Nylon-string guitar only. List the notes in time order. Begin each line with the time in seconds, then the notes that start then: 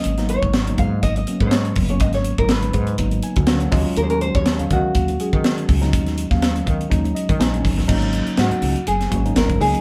Already playing: D#5
0.30 C#5
0.79 F5
1.03 D#5
1.17 D#5
1.42 C#5
1.90 C#5
2.01 D#5
2.14 C#5
2.39 A#4
2.51 B4
3.97 A#4
4.03 C5
4.10 A#4
4.22 C5
4.35 C#5
4.73 F#4
8.40 F#4
8.88 G#4
9.37 A#4
9.61 G#4